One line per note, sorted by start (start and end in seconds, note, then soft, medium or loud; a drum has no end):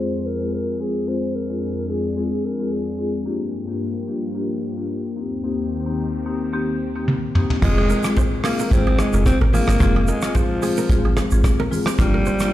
0.00 3.22 F2 medium
0.00 3.22 F3 medium
0.00 0.19 G#3 medium
0.00 0.19 C4 medium
0.00 1.06 C4 medium
0.00 0.19 F4 medium
0.00 0.19 G#4 medium
0.00 3.22 G#4 medium
0.00 0.28 C5 loud
0.27 0.53 A#4 loud
0.41 0.60 G#3 medium
0.41 0.60 C4 medium
0.41 0.60 F4 medium
0.41 0.60 G#4 medium
0.54 0.82 A#4 medium
0.80 1.01 G#3 medium
0.80 1.01 C4 medium
0.80 1.01 F4 medium
0.80 1.01 G#4 medium
0.80 1.10 G#4 medium
1.08 1.28 G#3 medium
1.08 1.28 C4 medium
1.08 3.24 D4 medium
1.08 1.28 F4 medium
1.08 1.28 G#4 medium
1.08 1.37 C5 loud
1.35 1.92 A#4 loud
1.50 1.69 G#3 medium
1.50 1.69 C4 medium
1.50 1.69 F4 medium
1.50 1.69 G#4 medium
1.89 2.10 G#3 medium
1.89 2.10 C4 medium
1.89 2.10 F4 medium
1.89 2.10 G#4 medium
1.89 2.17 G#4 medium
2.17 2.37 G#3 medium
2.17 2.37 C4 medium
2.17 2.37 F4 medium
2.17 2.37 G#4 medium
2.17 2.46 G#4 medium
2.45 2.73 A#4 medium
2.59 2.78 G#3 medium
2.59 2.78 C4 medium
2.59 2.78 F4 medium
2.59 2.78 G#4 medium
2.72 3.14 G#4 medium
2.98 3.19 G#3 medium
2.98 3.19 C4 medium
2.98 3.19 F4 medium
2.98 3.19 G#4 medium
3.26 5.15 G2 medium
3.26 5.15 F3 medium
3.26 3.46 A#3 medium
3.26 5.15 A#3 medium
3.26 3.46 D4 medium
3.26 3.46 F4 medium
3.26 7.58 G4 medium
3.26 3.46 G4 loud
3.68 3.87 A#3 medium
3.68 3.87 D4 medium
3.68 3.87 F4 medium
3.68 3.87 G4 medium
4.07 4.28 A#3 medium
4.07 4.28 D4 medium
4.07 4.28 F4 medium
4.07 4.28 G4 medium
4.35 4.55 A#3 medium
4.35 4.55 D4 medium
4.35 4.55 F4 medium
4.35 4.55 G4 loud
4.77 4.96 A#3 medium
4.77 4.96 D4 medium
4.77 4.96 F4 medium
4.77 4.96 G4 medium
5.16 7.60 D#2 medium
5.16 7.60 D#3 medium
5.16 5.37 A#3 medium
5.16 7.60 C4 medium
5.16 5.37 C4 medium
5.16 5.37 D#4 medium
5.16 5.37 G4 medium
5.44 5.64 A#3 medium
5.44 5.64 C4 medium
5.44 5.65 D#4 medium
5.44 5.65 G4 loud
5.86 6.05 A#3 medium
5.86 6.05 C4 medium
5.86 6.05 D#4 medium
5.86 6.05 G4 medium
6.26 6.46 A#3 medium
6.26 6.46 C4 medium
6.26 6.46 D#4 medium
6.26 6.46 G4 medium
6.53 6.73 A#3 medium
6.53 6.74 C4 medium
6.53 6.74 D#4 medium
6.53 6.74 G4 loud
6.95 7.14 A#3 medium
6.95 7.14 C4 medium
6.95 7.14 D#4 medium
6.95 7.15 G4 medium
7.08 high tom medium
7.35 7.55 A#3 medium
7.35 7.55 C4 medium
7.35 7.56 D#4 medium
7.35 7.56 G4 medium
7.35 mid tom medium
7.50 floor tom medium
7.62 7.93 F1 loud
7.62 7.83 G#3 loud
7.62 8.13 G#3 loud
7.62 7.83 C4 medium
7.62 7.83 F4 medium
7.62 7.83 G#4 loud
7.62 kick loud
7.62 cross-stick loud
7.62 crash loud
7.62 low conga medium
7.78 7.84 G#4 medium
7.90 7.98 A#4 medium
7.90 shaker medium
8.04 8.23 G#3 medium
8.04 8.23 C4 medium
8.04 8.23 F4 medium
8.04 8.24 G#4 medium
8.04 cross-stick medium
8.04 shaker medium
8.17 8.26 C5 medium
8.17 kick medium
8.17 high bongo medium
8.17 shaker medium
8.44 8.64 G#3 medium
8.44 8.74 A#3 loud
8.44 8.64 C4 medium
8.44 8.64 F4 medium
8.44 8.65 G#4 medium
8.44 8.53 G#4 medium
8.44 cross-stick medium
8.44 open hi-hat medium
8.44 shaker medium
8.59 8.66 A#4 medium
8.59 shaker medium
8.71 9.02 G#1 loud
8.71 8.92 G#3 loud
8.71 8.92 C4 medium
8.71 9.01 C4 loud
8.71 8.92 F4 medium
8.71 8.92 G#4 loud
8.71 kick loud
8.71 hi-hat pedal medium
8.71 low conga medium
8.71 shaker medium
8.87 8.94 G#4 medium
8.99 9.26 G#3 loud
8.99 cross-stick loud
8.99 low bongo medium
8.99 shaker medium
9.13 9.34 F1 loud
9.13 9.32 G#3 medium
9.13 9.32 C4 medium
9.13 9.33 F4 medium
9.13 9.33 G#4 medium
9.13 9.21 A#4 medium
9.13 shaker medium
9.26 9.39 C4 loud
9.26 kick loud
9.26 cross-stick loud
9.26 high bongo medium
9.26 shaker medium
9.41 9.61 G#1 medium
9.41 9.48 A#4 medium
9.41 low bongo medium
9.53 9.73 G#3 medium
9.53 10.11 A#3 loud
9.53 9.74 C4 medium
9.53 9.74 F4 medium
9.53 9.74 G#4 medium
9.53 9.62 G#4 medium
9.53 open hi-hat medium
9.53 low conga medium
9.53 shaker medium
9.68 9.77 G1 loud
9.68 cross-stick loud
9.68 shaker medium
9.80 10.11 F1 loud
9.80 10.01 G#3 loud
9.80 10.01 C4 medium
9.80 10.01 F4 medium
9.80 10.01 G#4 loud
9.80 kick loud
9.80 cross-stick medium
9.80 hi-hat pedal medium
9.80 low conga medium
9.80 shaker medium
9.96 10.03 G#4 medium
10.07 10.38 G#3 loud
10.07 10.16 A#4 medium
10.07 shaker medium
10.22 10.41 G#3 medium
10.22 10.41 C4 medium
10.22 10.42 F4 medium
10.22 10.42 G#4 medium
10.22 cross-stick medium
10.22 shaker medium
10.35 11.45 F3 medium
10.35 10.44 C5 medium
10.35 kick medium
10.35 high bongo medium
10.35 shaker medium
10.62 10.82 G#3 medium
10.62 10.83 C4 medium
10.62 10.83 F4 medium
10.62 10.83 G#4 medium
10.62 10.71 G#4 medium
10.62 open hi-hat medium
10.62 shaker medium
10.77 10.84 A#4 medium
10.77 shaker medium
10.89 11.21 G#1 medium
10.89 11.10 G#3 medium
10.89 11.10 C4 medium
10.89 11.10 F4 medium
10.89 11.10 G#4 loud
10.89 kick loud
10.89 hi-hat pedal medium
10.89 low conga medium
10.89 shaker medium
11.05 11.12 G#4 medium
11.17 11.25 G#4 medium
11.17 cross-stick medium
11.17 low bongo medium
11.17 shaker medium
11.31 11.52 G#1 loud
11.31 11.50 G#3 medium
11.31 11.51 C4 medium
11.31 11.51 F4 medium
11.31 11.51 G#4 medium
11.31 shaker medium
11.44 kick loud
11.44 cross-stick loud
11.44 high bongo medium
11.44 shaker medium
11.60 11.66 A#4 medium
11.60 low bongo medium
11.71 11.92 G#3 medium
11.71 11.92 C4 medium
11.71 11.92 F4 medium
11.71 11.92 G#4 medium
11.71 open hi-hat medium
11.71 low conga medium
11.71 shaker medium
11.86 11.93 C5 medium
11.86 cross-stick loud
11.86 shaker medium
11.98 12.30 G1 loud
11.98 12.19 G3 loud
11.98 12.53 G3 loud
11.98 12.19 A#3 medium
11.98 12.19 D4 medium
11.98 12.19 F4 loud
11.98 kick loud
11.98 cross-stick loud
11.98 hi-hat pedal medium
11.98 low conga medium
11.98 shaker medium
12.14 12.21 A#4 medium
12.26 12.35 C5 medium
12.26 shaker medium
12.40 12.53 G3 medium
12.40 12.53 A#3 medium
12.40 12.53 D4 medium
12.40 12.53 F4 medium
12.40 cross-stick medium
12.40 shaker medium